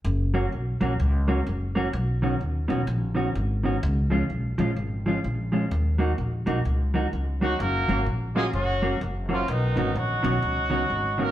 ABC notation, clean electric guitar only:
X:1
M:4/4
L:1/8
Q:"Swing" 1/4=127
K:F#
V:1 name="Clean electric guitar"
z [F,A,CF] z [F,A,CF] z [F,A,CF] z [F,A,CF] | z [D,B,CF] z [D,B,CF] z [D,B,CF] z [D,B,CF] | z [E,G,CE] z [E,G,CE] z [E,G,CE] z [E,G,CE] | z [F,A,DF] z [F,A,DF] z [F,A,DF] z [F,A,DF] |
z [F,A,CF] z [F,A,CF] z [F,A,CF] z [F,A,CF] | z [D,B,CF] z [D,B,CF] z [D,B,CF] z [D,B,CF] |]